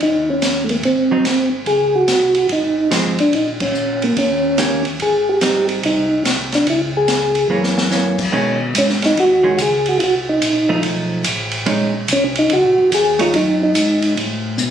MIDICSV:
0, 0, Header, 1, 5, 480
1, 0, Start_track
1, 0, Time_signature, 4, 2, 24, 8
1, 0, Tempo, 416956
1, 16928, End_track
2, 0, Start_track
2, 0, Title_t, "Tonewheel organ"
2, 0, Program_c, 0, 16
2, 30, Note_on_c, 0, 63, 87
2, 338, Note_off_c, 0, 63, 0
2, 347, Note_on_c, 0, 61, 77
2, 738, Note_on_c, 0, 57, 53
2, 744, Note_off_c, 0, 61, 0
2, 805, Note_off_c, 0, 57, 0
2, 808, Note_on_c, 0, 58, 66
2, 880, Note_off_c, 0, 58, 0
2, 980, Note_on_c, 0, 60, 79
2, 1718, Note_off_c, 0, 60, 0
2, 1925, Note_on_c, 0, 68, 84
2, 2246, Note_off_c, 0, 68, 0
2, 2249, Note_on_c, 0, 66, 92
2, 2843, Note_off_c, 0, 66, 0
2, 2907, Note_on_c, 0, 63, 82
2, 3341, Note_off_c, 0, 63, 0
2, 3685, Note_on_c, 0, 62, 68
2, 3851, Note_off_c, 0, 62, 0
2, 3858, Note_on_c, 0, 63, 85
2, 3995, Note_off_c, 0, 63, 0
2, 4163, Note_on_c, 0, 61, 68
2, 4645, Note_on_c, 0, 58, 69
2, 4652, Note_off_c, 0, 61, 0
2, 4794, Note_off_c, 0, 58, 0
2, 4816, Note_on_c, 0, 61, 80
2, 5554, Note_off_c, 0, 61, 0
2, 5781, Note_on_c, 0, 68, 88
2, 6092, Note_off_c, 0, 68, 0
2, 6093, Note_on_c, 0, 67, 80
2, 6529, Note_off_c, 0, 67, 0
2, 6740, Note_on_c, 0, 63, 72
2, 7175, Note_off_c, 0, 63, 0
2, 7540, Note_on_c, 0, 62, 69
2, 7681, Note_off_c, 0, 62, 0
2, 7709, Note_on_c, 0, 64, 87
2, 7843, Note_off_c, 0, 64, 0
2, 8023, Note_on_c, 0, 68, 87
2, 8608, Note_off_c, 0, 68, 0
2, 10110, Note_on_c, 0, 61, 85
2, 10243, Note_off_c, 0, 61, 0
2, 10424, Note_on_c, 0, 63, 82
2, 10577, Note_off_c, 0, 63, 0
2, 10588, Note_on_c, 0, 66, 96
2, 10980, Note_off_c, 0, 66, 0
2, 11021, Note_on_c, 0, 66, 68
2, 11049, Note_off_c, 0, 66, 0
2, 11069, Note_on_c, 0, 68, 89
2, 11374, Note_off_c, 0, 68, 0
2, 11383, Note_on_c, 0, 66, 91
2, 11483, Note_off_c, 0, 66, 0
2, 11501, Note_on_c, 0, 65, 69
2, 11529, Note_off_c, 0, 65, 0
2, 11553, Note_on_c, 0, 66, 90
2, 11686, Note_off_c, 0, 66, 0
2, 11849, Note_on_c, 0, 63, 77
2, 12440, Note_off_c, 0, 63, 0
2, 13958, Note_on_c, 0, 61, 81
2, 14089, Note_off_c, 0, 61, 0
2, 14261, Note_on_c, 0, 63, 77
2, 14416, Note_off_c, 0, 63, 0
2, 14427, Note_on_c, 0, 66, 96
2, 14859, Note_off_c, 0, 66, 0
2, 14900, Note_on_c, 0, 68, 93
2, 15207, Note_on_c, 0, 65, 87
2, 15210, Note_off_c, 0, 68, 0
2, 15353, Note_off_c, 0, 65, 0
2, 15377, Note_on_c, 0, 63, 87
2, 15680, Note_off_c, 0, 63, 0
2, 15694, Note_on_c, 0, 63, 77
2, 16284, Note_off_c, 0, 63, 0
2, 16928, End_track
3, 0, Start_track
3, 0, Title_t, "Hollow-body jazz guitar"
3, 0, Program_c, 1, 26
3, 1282, Note_on_c, 1, 54, 51
3, 1290, Note_on_c, 1, 60, 61
3, 1298, Note_on_c, 1, 63, 58
3, 1428, Note_off_c, 1, 54, 0
3, 1432, Note_off_c, 1, 60, 0
3, 1436, Note_off_c, 1, 63, 0
3, 3350, Note_on_c, 1, 53, 51
3, 3360, Note_on_c, 1, 56, 69
3, 3360, Note_on_c, 1, 60, 61
3, 3638, Note_off_c, 1, 53, 0
3, 3643, Note_off_c, 1, 56, 0
3, 3643, Note_off_c, 1, 60, 0
3, 5275, Note_on_c, 1, 51, 51
3, 5285, Note_on_c, 1, 58, 57
3, 5289, Note_on_c, 1, 61, 60
3, 5291, Note_on_c, 1, 67, 64
3, 5559, Note_off_c, 1, 51, 0
3, 5564, Note_off_c, 1, 58, 0
3, 5566, Note_off_c, 1, 61, 0
3, 5567, Note_off_c, 1, 67, 0
3, 6239, Note_on_c, 1, 55, 51
3, 6249, Note_on_c, 1, 63, 53
3, 6252, Note_on_c, 1, 60, 53
3, 6968, Note_off_c, 1, 55, 0
3, 6974, Note_off_c, 1, 63, 0
3, 6975, Note_off_c, 1, 60, 0
3, 8632, Note_on_c, 1, 52, 44
3, 8639, Note_on_c, 1, 58, 50
3, 8645, Note_on_c, 1, 61, 48
3, 9084, Note_off_c, 1, 52, 0
3, 9097, Note_off_c, 1, 58, 0
3, 9098, Note_on_c, 1, 52, 53
3, 9103, Note_off_c, 1, 61, 0
3, 9111, Note_on_c, 1, 58, 49
3, 9115, Note_on_c, 1, 61, 51
3, 9389, Note_off_c, 1, 52, 0
3, 9395, Note_off_c, 1, 58, 0
3, 9397, Note_off_c, 1, 61, 0
3, 9581, Note_on_c, 1, 51, 53
3, 9584, Note_on_c, 1, 56, 67
3, 9592, Note_on_c, 1, 61, 70
3, 9870, Note_off_c, 1, 51, 0
3, 9872, Note_off_c, 1, 56, 0
3, 9876, Note_off_c, 1, 61, 0
3, 10859, Note_on_c, 1, 51, 61
3, 10868, Note_on_c, 1, 56, 76
3, 10872, Note_on_c, 1, 61, 70
3, 11014, Note_off_c, 1, 51, 0
3, 11018, Note_off_c, 1, 56, 0
3, 11020, Note_off_c, 1, 61, 0
3, 12308, Note_on_c, 1, 53, 61
3, 12310, Note_on_c, 1, 57, 62
3, 12317, Note_on_c, 1, 63, 73
3, 12921, Note_off_c, 1, 53, 0
3, 12922, Note_off_c, 1, 57, 0
3, 12926, Note_off_c, 1, 63, 0
3, 13424, Note_on_c, 1, 56, 59
3, 13430, Note_on_c, 1, 61, 53
3, 13443, Note_on_c, 1, 63, 60
3, 13712, Note_off_c, 1, 56, 0
3, 13715, Note_off_c, 1, 61, 0
3, 13721, Note_off_c, 1, 63, 0
3, 15185, Note_on_c, 1, 57, 54
3, 15198, Note_on_c, 1, 61, 68
3, 15201, Note_on_c, 1, 63, 67
3, 15337, Note_off_c, 1, 57, 0
3, 15343, Note_off_c, 1, 61, 0
3, 15345, Note_off_c, 1, 63, 0
3, 16928, End_track
4, 0, Start_track
4, 0, Title_t, "Tonewheel organ"
4, 0, Program_c, 2, 16
4, 5, Note_on_c, 2, 39, 75
4, 918, Note_off_c, 2, 39, 0
4, 955, Note_on_c, 2, 32, 79
4, 1873, Note_off_c, 2, 32, 0
4, 1911, Note_on_c, 2, 37, 70
4, 2362, Note_off_c, 2, 37, 0
4, 2385, Note_on_c, 2, 36, 67
4, 2839, Note_off_c, 2, 36, 0
4, 2870, Note_on_c, 2, 32, 81
4, 3789, Note_off_c, 2, 32, 0
4, 3830, Note_on_c, 2, 34, 73
4, 4748, Note_off_c, 2, 34, 0
4, 4794, Note_on_c, 2, 39, 81
4, 5543, Note_off_c, 2, 39, 0
4, 5595, Note_on_c, 2, 39, 59
4, 5749, Note_off_c, 2, 39, 0
4, 5754, Note_on_c, 2, 32, 81
4, 6669, Note_off_c, 2, 32, 0
4, 6712, Note_on_c, 2, 36, 77
4, 7161, Note_off_c, 2, 36, 0
4, 7193, Note_on_c, 2, 36, 76
4, 7641, Note_off_c, 2, 36, 0
4, 7674, Note_on_c, 2, 37, 72
4, 8589, Note_off_c, 2, 37, 0
4, 8615, Note_on_c, 2, 42, 85
4, 9539, Note_off_c, 2, 42, 0
4, 9589, Note_on_c, 2, 47, 79
4, 10057, Note_off_c, 2, 47, 0
4, 10070, Note_on_c, 2, 44, 83
4, 10538, Note_off_c, 2, 44, 0
4, 10552, Note_on_c, 2, 39, 79
4, 11019, Note_off_c, 2, 39, 0
4, 11027, Note_on_c, 2, 37, 84
4, 11496, Note_off_c, 2, 37, 0
4, 11513, Note_on_c, 2, 36, 75
4, 11979, Note_off_c, 2, 36, 0
4, 11994, Note_on_c, 2, 34, 78
4, 12460, Note_off_c, 2, 34, 0
4, 12466, Note_on_c, 2, 35, 82
4, 12936, Note_off_c, 2, 35, 0
4, 12951, Note_on_c, 2, 33, 94
4, 13419, Note_off_c, 2, 33, 0
4, 13429, Note_on_c, 2, 34, 88
4, 13898, Note_off_c, 2, 34, 0
4, 13909, Note_on_c, 2, 36, 86
4, 14377, Note_off_c, 2, 36, 0
4, 14385, Note_on_c, 2, 37, 86
4, 14545, Note_off_c, 2, 37, 0
4, 14551, Note_on_c, 2, 34, 51
4, 14713, Note_off_c, 2, 34, 0
4, 14716, Note_on_c, 2, 32, 67
4, 14864, Note_off_c, 2, 32, 0
4, 14870, Note_on_c, 2, 39, 83
4, 15338, Note_off_c, 2, 39, 0
4, 15356, Note_on_c, 2, 42, 74
4, 15821, Note_off_c, 2, 42, 0
4, 15832, Note_on_c, 2, 44, 74
4, 16299, Note_off_c, 2, 44, 0
4, 16312, Note_on_c, 2, 45, 85
4, 16779, Note_off_c, 2, 45, 0
4, 16783, Note_on_c, 2, 47, 89
4, 16928, Note_off_c, 2, 47, 0
4, 16928, End_track
5, 0, Start_track
5, 0, Title_t, "Drums"
5, 4, Note_on_c, 9, 36, 27
5, 5, Note_on_c, 9, 51, 44
5, 119, Note_off_c, 9, 36, 0
5, 120, Note_off_c, 9, 51, 0
5, 483, Note_on_c, 9, 44, 50
5, 483, Note_on_c, 9, 51, 55
5, 487, Note_on_c, 9, 38, 55
5, 598, Note_off_c, 9, 44, 0
5, 598, Note_off_c, 9, 51, 0
5, 602, Note_off_c, 9, 38, 0
5, 796, Note_on_c, 9, 51, 41
5, 911, Note_off_c, 9, 51, 0
5, 959, Note_on_c, 9, 51, 43
5, 963, Note_on_c, 9, 36, 27
5, 1074, Note_off_c, 9, 51, 0
5, 1078, Note_off_c, 9, 36, 0
5, 1438, Note_on_c, 9, 44, 51
5, 1438, Note_on_c, 9, 51, 57
5, 1441, Note_on_c, 9, 38, 58
5, 1553, Note_off_c, 9, 44, 0
5, 1553, Note_off_c, 9, 51, 0
5, 1557, Note_off_c, 9, 38, 0
5, 1912, Note_on_c, 9, 51, 47
5, 1916, Note_on_c, 9, 36, 30
5, 2027, Note_off_c, 9, 51, 0
5, 2031, Note_off_c, 9, 36, 0
5, 2392, Note_on_c, 9, 44, 54
5, 2392, Note_on_c, 9, 51, 52
5, 2395, Note_on_c, 9, 38, 55
5, 2507, Note_off_c, 9, 44, 0
5, 2507, Note_off_c, 9, 51, 0
5, 2510, Note_off_c, 9, 38, 0
5, 2700, Note_on_c, 9, 51, 41
5, 2815, Note_off_c, 9, 51, 0
5, 2868, Note_on_c, 9, 51, 52
5, 2872, Note_on_c, 9, 36, 29
5, 2983, Note_off_c, 9, 51, 0
5, 2987, Note_off_c, 9, 36, 0
5, 3354, Note_on_c, 9, 44, 53
5, 3354, Note_on_c, 9, 51, 55
5, 3357, Note_on_c, 9, 38, 62
5, 3469, Note_off_c, 9, 44, 0
5, 3469, Note_off_c, 9, 51, 0
5, 3472, Note_off_c, 9, 38, 0
5, 3667, Note_on_c, 9, 51, 44
5, 3782, Note_off_c, 9, 51, 0
5, 3831, Note_on_c, 9, 51, 45
5, 3834, Note_on_c, 9, 36, 28
5, 3947, Note_off_c, 9, 51, 0
5, 3949, Note_off_c, 9, 36, 0
5, 4147, Note_on_c, 9, 51, 64
5, 4150, Note_on_c, 9, 36, 76
5, 4262, Note_off_c, 9, 51, 0
5, 4265, Note_off_c, 9, 36, 0
5, 4313, Note_on_c, 9, 44, 45
5, 4428, Note_off_c, 9, 44, 0
5, 4629, Note_on_c, 9, 51, 38
5, 4744, Note_off_c, 9, 51, 0
5, 4795, Note_on_c, 9, 51, 49
5, 4796, Note_on_c, 9, 36, 30
5, 4910, Note_off_c, 9, 51, 0
5, 4911, Note_off_c, 9, 36, 0
5, 5271, Note_on_c, 9, 44, 46
5, 5271, Note_on_c, 9, 51, 57
5, 5274, Note_on_c, 9, 38, 54
5, 5386, Note_off_c, 9, 44, 0
5, 5386, Note_off_c, 9, 51, 0
5, 5389, Note_off_c, 9, 38, 0
5, 5582, Note_on_c, 9, 51, 43
5, 5697, Note_off_c, 9, 51, 0
5, 5751, Note_on_c, 9, 51, 43
5, 5756, Note_on_c, 9, 36, 26
5, 5866, Note_off_c, 9, 51, 0
5, 5871, Note_off_c, 9, 36, 0
5, 6230, Note_on_c, 9, 44, 43
5, 6230, Note_on_c, 9, 51, 56
5, 6233, Note_on_c, 9, 38, 57
5, 6345, Note_off_c, 9, 44, 0
5, 6345, Note_off_c, 9, 51, 0
5, 6348, Note_off_c, 9, 38, 0
5, 6545, Note_on_c, 9, 51, 40
5, 6661, Note_off_c, 9, 51, 0
5, 6715, Note_on_c, 9, 51, 53
5, 6717, Note_on_c, 9, 36, 28
5, 6830, Note_off_c, 9, 51, 0
5, 6832, Note_off_c, 9, 36, 0
5, 7199, Note_on_c, 9, 44, 50
5, 7199, Note_on_c, 9, 51, 57
5, 7202, Note_on_c, 9, 38, 56
5, 7314, Note_off_c, 9, 44, 0
5, 7314, Note_off_c, 9, 51, 0
5, 7317, Note_off_c, 9, 38, 0
5, 7510, Note_on_c, 9, 51, 37
5, 7513, Note_on_c, 9, 38, 41
5, 7625, Note_off_c, 9, 51, 0
5, 7628, Note_off_c, 9, 38, 0
5, 7674, Note_on_c, 9, 36, 28
5, 7675, Note_on_c, 9, 51, 54
5, 7790, Note_off_c, 9, 36, 0
5, 7790, Note_off_c, 9, 51, 0
5, 8149, Note_on_c, 9, 44, 49
5, 8149, Note_on_c, 9, 51, 52
5, 8153, Note_on_c, 9, 38, 61
5, 8264, Note_off_c, 9, 44, 0
5, 8264, Note_off_c, 9, 51, 0
5, 8268, Note_off_c, 9, 38, 0
5, 8460, Note_on_c, 9, 51, 40
5, 8575, Note_off_c, 9, 51, 0
5, 8790, Note_on_c, 9, 38, 45
5, 8905, Note_off_c, 9, 38, 0
5, 8953, Note_on_c, 9, 38, 65
5, 9068, Note_off_c, 9, 38, 0
5, 9111, Note_on_c, 9, 44, 47
5, 9114, Note_on_c, 9, 38, 48
5, 9226, Note_off_c, 9, 44, 0
5, 9229, Note_off_c, 9, 38, 0
5, 9423, Note_on_c, 9, 36, 67
5, 9426, Note_on_c, 9, 49, 65
5, 9538, Note_off_c, 9, 36, 0
5, 9541, Note_off_c, 9, 49, 0
5, 9590, Note_on_c, 9, 36, 22
5, 9705, Note_off_c, 9, 36, 0
5, 10070, Note_on_c, 9, 44, 47
5, 10070, Note_on_c, 9, 51, 66
5, 10071, Note_on_c, 9, 36, 22
5, 10185, Note_off_c, 9, 44, 0
5, 10185, Note_off_c, 9, 51, 0
5, 10186, Note_off_c, 9, 36, 0
5, 10236, Note_on_c, 9, 38, 30
5, 10351, Note_off_c, 9, 38, 0
5, 10386, Note_on_c, 9, 51, 41
5, 10395, Note_on_c, 9, 38, 43
5, 10501, Note_off_c, 9, 51, 0
5, 10511, Note_off_c, 9, 38, 0
5, 10553, Note_on_c, 9, 36, 19
5, 10559, Note_on_c, 9, 51, 52
5, 10668, Note_off_c, 9, 36, 0
5, 10674, Note_off_c, 9, 51, 0
5, 11032, Note_on_c, 9, 36, 19
5, 11033, Note_on_c, 9, 44, 57
5, 11033, Note_on_c, 9, 51, 63
5, 11147, Note_off_c, 9, 36, 0
5, 11148, Note_off_c, 9, 44, 0
5, 11148, Note_off_c, 9, 51, 0
5, 11347, Note_on_c, 9, 51, 47
5, 11462, Note_off_c, 9, 51, 0
5, 11511, Note_on_c, 9, 36, 23
5, 11512, Note_on_c, 9, 51, 55
5, 11627, Note_off_c, 9, 36, 0
5, 11627, Note_off_c, 9, 51, 0
5, 11991, Note_on_c, 9, 36, 21
5, 11991, Note_on_c, 9, 44, 51
5, 11991, Note_on_c, 9, 51, 64
5, 12106, Note_off_c, 9, 36, 0
5, 12107, Note_off_c, 9, 44, 0
5, 12107, Note_off_c, 9, 51, 0
5, 12465, Note_on_c, 9, 51, 53
5, 12469, Note_on_c, 9, 36, 18
5, 12580, Note_off_c, 9, 51, 0
5, 12584, Note_off_c, 9, 36, 0
5, 12944, Note_on_c, 9, 44, 59
5, 12944, Note_on_c, 9, 51, 67
5, 12949, Note_on_c, 9, 36, 22
5, 13059, Note_off_c, 9, 44, 0
5, 13059, Note_off_c, 9, 51, 0
5, 13064, Note_off_c, 9, 36, 0
5, 13255, Note_on_c, 9, 51, 41
5, 13371, Note_off_c, 9, 51, 0
5, 13426, Note_on_c, 9, 51, 49
5, 13430, Note_on_c, 9, 36, 24
5, 13541, Note_off_c, 9, 51, 0
5, 13545, Note_off_c, 9, 36, 0
5, 13909, Note_on_c, 9, 44, 44
5, 13909, Note_on_c, 9, 51, 63
5, 13912, Note_on_c, 9, 36, 18
5, 14024, Note_off_c, 9, 44, 0
5, 14024, Note_off_c, 9, 51, 0
5, 14027, Note_off_c, 9, 36, 0
5, 14223, Note_on_c, 9, 51, 45
5, 14338, Note_off_c, 9, 51, 0
5, 14386, Note_on_c, 9, 51, 50
5, 14393, Note_on_c, 9, 36, 19
5, 14501, Note_off_c, 9, 51, 0
5, 14508, Note_off_c, 9, 36, 0
5, 14872, Note_on_c, 9, 44, 56
5, 14872, Note_on_c, 9, 51, 65
5, 14876, Note_on_c, 9, 36, 25
5, 14987, Note_off_c, 9, 44, 0
5, 14987, Note_off_c, 9, 51, 0
5, 14991, Note_off_c, 9, 36, 0
5, 15187, Note_on_c, 9, 51, 48
5, 15303, Note_off_c, 9, 51, 0
5, 15353, Note_on_c, 9, 51, 55
5, 15357, Note_on_c, 9, 36, 19
5, 15468, Note_off_c, 9, 51, 0
5, 15472, Note_off_c, 9, 36, 0
5, 15829, Note_on_c, 9, 44, 56
5, 15829, Note_on_c, 9, 51, 59
5, 15836, Note_on_c, 9, 36, 25
5, 15944, Note_off_c, 9, 44, 0
5, 15944, Note_off_c, 9, 51, 0
5, 15951, Note_off_c, 9, 36, 0
5, 16144, Note_on_c, 9, 51, 43
5, 16259, Note_off_c, 9, 51, 0
5, 16316, Note_on_c, 9, 51, 47
5, 16317, Note_on_c, 9, 36, 18
5, 16431, Note_off_c, 9, 51, 0
5, 16432, Note_off_c, 9, 36, 0
5, 16785, Note_on_c, 9, 44, 54
5, 16900, Note_off_c, 9, 44, 0
5, 16928, End_track
0, 0, End_of_file